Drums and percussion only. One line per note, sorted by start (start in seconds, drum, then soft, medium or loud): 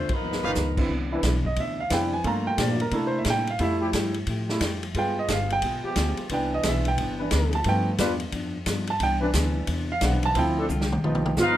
0.09 kick medium
0.09 ride medium
0.32 snare medium
0.44 floor tom medium
0.55 snare medium
0.55 hi-hat pedal medium
0.77 kick medium
0.77 crash medium
0.89 kick soft
1.23 kick soft
1.23 snare medium
1.23 hi-hat pedal medium
1.23 ride medium
1.45 kick soft
1.56 kick soft
1.56 ride medium
1.90 kick soft
1.90 snare medium
1.90 hi-hat pedal medium
1.90 ride medium
2.24 kick soft
2.24 ride medium
2.58 kick soft
2.58 snare medium
2.58 hi-hat pedal medium
2.58 ride medium
2.80 ride soft
2.91 kick soft
2.91 ride medium
3.25 kick soft
3.25 snare medium
3.25 hi-hat pedal medium
3.25 ride medium
3.47 ride soft
3.59 kick soft
3.59 ride medium
3.93 kick soft
3.93 snare medium
3.93 hi-hat pedal medium
3.93 ride medium
4.14 ride soft
4.27 kick soft
4.27 ride medium
4.49 snare medium
4.61 kick soft
4.61 snare medium
4.61 hi-hat pedal medium
4.61 ride medium
4.83 ride soft
4.94 kick soft
4.94 ride medium
5.28 kick soft
5.28 snare medium
5.28 hi-hat pedal medium
5.28 ride medium
5.50 ride soft
5.62 kick soft
5.62 ride medium
5.96 kick soft
5.96 snare medium
5.96 hi-hat pedal medium
5.96 ride medium
6.17 ride soft
6.29 kick soft
6.29 ride medium
6.63 kick soft
6.63 snare medium
6.63 hi-hat pedal medium
6.63 ride medium
6.85 ride soft
6.98 kick soft
6.98 ride medium
7.31 kick soft
7.31 snare medium
7.31 hi-hat pedal medium
7.31 ride medium
7.53 ride soft
7.64 kick soft
7.64 ride medium
7.98 kick soft
7.98 snare medium
7.98 hi-hat pedal medium
7.98 ride medium
8.20 ride soft
8.32 kick soft
8.32 ride medium
8.66 kick soft
8.66 snare medium
8.66 hi-hat pedal medium
8.66 ride medium
8.87 ride medium
9.00 kick soft
9.00 ride medium
9.33 kick soft
9.33 snare medium
9.33 hi-hat pedal medium
9.33 ride medium
9.67 kick soft
9.67 ride medium
10.01 kick soft
10.01 snare medium
10.01 hi-hat pedal medium
10.01 ride medium
10.23 ride soft
10.35 kick soft
10.35 ride medium
10.69 hi-hat pedal medium
10.81 snare medium
10.92 mid tom medium
11.04 mid tom medium
11.15 mid tom medium
11.26 mid tom medium
11.37 snare medium
11.37 hi-hat pedal medium